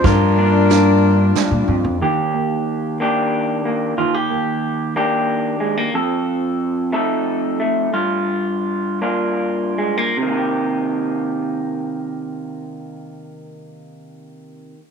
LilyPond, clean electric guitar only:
\new Staff \with { instrumentName = "Clean electric guitar" } { \time 3/4 \key c \minor \tempo 4 = 90 << { f'8 d'2~ d'8 | g'4. <bes d' g'>4 bes8 | f'16 g'4~ g'16 <bes d' g'>4 aes16 bes16 | a'4. <a ees' a'>4 a8 |
f'4. <bes d' f'>4 aes16 bes16 | <ees bes ees' g'>2.~ | <ees bes ees' g'>2. | } \\ { g,2 g,8 f,8 | ees,2. | ees,2. | f,2. |
g,2. | c2.~ | c2. | } >> }